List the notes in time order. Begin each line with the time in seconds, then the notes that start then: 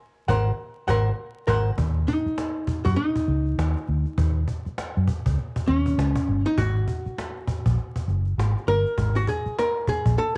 0.28 G#1 A#4 C5 F#5, cajon bass, cajon slap
0.88 G#1 A#4 C5 F#5, cajon bass, cajon slap
1.47 G#1 A#4 C5 F#5, cajon bass, cajon slap
1.78 D#2, cajon bass
1.96 cajon slap
2.08 D#4, cajon bass
2.26 muted fingered electric bass stroke, cajon slap
2.38 cajon slap
2.56 cajon slap
2.67 muted fingered electric bass stroke, cajon bass
2.85 F#2 F#4, cajon bass
2.96 D#4, cajon slap
3.16 cajon bass
3.27 C#2, cajon slap
3.45 cajon slap
3.58 D#2, cajon slap
3.76 cajon slap
3.88 D2
4.06 cajon slap
4.18 D#2, cajon bass
4.36 cajon slap
4.48 cajon bass
4.65 muted fingered electric bass stroke, cajon slap
4.78 cajon slap
4.96 F#2, cajon slap
5.08 cajon bass
5.26 C#2, cajon bass
5.38 cajon slap
5.56 cajon bass
5.67 D#2 C#4, cajon slap
5.86 cajon bass
5.98 C#2, cajon slap
6.16 cajon bass, cajon slap
6.28 G1
6.46 D#4, cajon slap
6.58 G#1 F#4, cajon bass
6.76 cajon slap
6.88 cajon bass
7.05 muted fingered electric bass stroke, cajon slap
7.18 cajon slap
7.36 cajon slap
7.47 muted fingered electric bass stroke, cajon bass
7.66 A#1, cajon bass
7.78 cajon slap
7.96 cajon bass
8.08 F#1, cajon slap
8.26 cajon slap
8.38 G#1, cajon slap
8.57 cajon slap
8.68 G1 A#4
8.86 cajon slap
8.98 G#1, cajon bass
9.16 F#4, cajon slap
9.27 G#4, cajon bass
9.46 muted fingered electric bass stroke, cajon slap
9.59 A#4, cajon slap
9.76 cajon slap
9.87 G#4, muted fingered electric bass stroke, cajon bass
10.06 A#1, cajon bass
10.18 A4, cajon slap